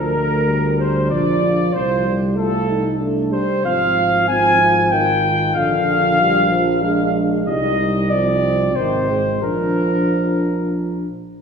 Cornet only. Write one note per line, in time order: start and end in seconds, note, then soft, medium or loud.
0.00 0.77 A#4 medium
0.80 1.10 C5 medium
1.10 1.75 D5 medium
1.73 2.14 C5 medium
2.37 2.96 A4 medium
3.33 3.67 C5 medium
3.65 4.28 F5 medium
4.28 4.94 G#5 loud
4.92 5.59 G5 medium
5.57 6.83 F5 loud
6.83 7.14 F5 medium
7.47 8.11 D#5 medium
8.10 8.77 D5 loud
8.76 9.42 C5 medium
9.43 10.73 A#4 medium